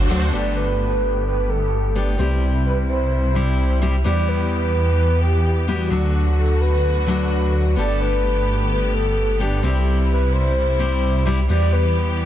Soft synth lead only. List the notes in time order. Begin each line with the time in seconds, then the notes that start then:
0.33 D5
0.56 B4
1.26 B4
1.50 A4
1.89 A4
1.96 G4
2.66 B4
2.89 C5
4.05 D5
4.28 B4
4.98 B4
5.21 G4
5.68 F#4
6.38 A4
6.61 B4
7.77 D5
8.01 B4
8.70 B4
8.94 A4
9.40 G4
10.10 B4
10.33 C5
11.49 D5
11.73 B4